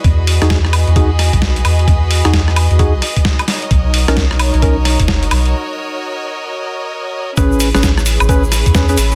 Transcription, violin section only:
Already playing: F#4 G#4 B4 D#5
3.48 F#4 A#4 C#5
7.38 C#4 E4 G#4 B4

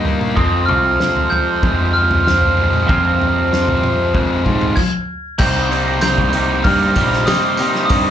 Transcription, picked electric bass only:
Already playing: G2
0.37 F2
0.69 C2
1.63 F2
2.90 F2
4.15 F2
4.46 G#2
5.40 C2
6.19 C2
6.65 G2
6.97 A#1
7.91 G2

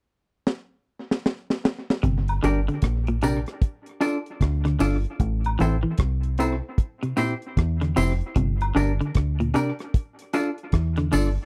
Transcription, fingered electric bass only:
2.04 G1
2.44 G1
2.83 A#1
4.41 D2
4.81 G1
5.20 A1
5.61 A1
6.00 C2
7.58 E2
7.98 F1
8.36 G1
8.76 G1
9.16 D2
10.73 E2
11.13 G1

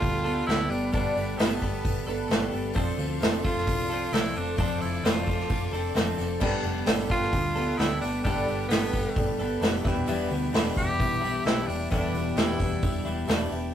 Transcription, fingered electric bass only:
0.02 D2
0.47 D2
0.69 G1
0.94 G1
1.16 G1
1.38 G1
1.62 G1
1.84 G1
2.06 G1
2.29 G1
2.52 G1
2.76 F1
2.98 D2
3.21 F1
3.44 F1
3.67 C2
4.12 C2
4.35 F1
4.59 F1
4.82 F1
5.04 F1
5.27 F1
5.49 F1
5.71 F1
5.95 F1
6.18 F1
6.41 G1
6.63 F1
6.86 G1
7.10 G1
7.33 D2
7.78 D2
8.01 G1
8.24 G1
8.47 G1
8.69 G1
8.93 G1
9.16 G1
9.38 G1
9.61 F1
9.85 E1
10.07 E1
10.30 D2
10.53 E1
10.76 E1
10.99 B1
11.45 B1
11.68 E1
11.91 E1
12.13 E1
12.36 E1
12.60 E1
12.83 E1
13.05 E1
13.28 E1
13.51 E1

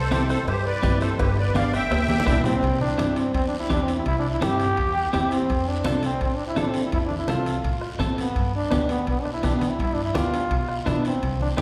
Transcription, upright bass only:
Already playing: C2
0.47 G2
0.83 G2
1.20 G1
1.91 D2
2.26 D2
2.62 C2
2.98 G2
3.34 E2
3.70 E2
4.06 C2
4.42 G2
4.78 E2
5.14 E2
5.49 F2
5.85 C2
6.21 A2
6.58 A2
6.93 F2
7.29 C2
7.64 A2
8.00 A2
8.36 G2
8.72 D2
9.07 B2
9.44 B2
9.79 G2
10.16 D2
10.51 B2
10.87 B2
11.23 C2

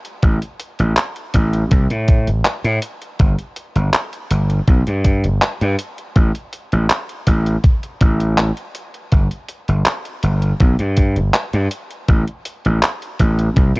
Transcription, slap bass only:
0.23 A1
0.80 A1
1.35 A1
1.72 C2
1.90 A2
2.28 A1
2.64 A2
3.20 G1
3.76 G1
4.31 G1
4.68 B1
4.87 G2
5.25 G1
5.61 G2
6.16 A1
6.73 A1
7.27 A1
8.01 A1
9.12 G1
9.69 G1
10.23 G1
10.61 B1
10.79 G2
11.17 G1
11.54 G2
12.09 A1
12.65 A1
13.20 A1
13.57 C2
13.76 A2

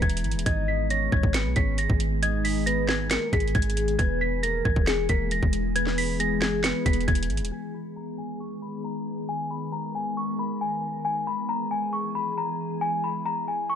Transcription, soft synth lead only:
0.46 D#5
0.90 C#5
1.35 B4
1.56 C#5
2.22 D#5
2.66 B4
3.11 A#4
3.33 G#4
3.99 B4
4.43 A#4
4.88 G#4
5.10 A#4
5.76 B4
6.20 G#4
6.64 B4

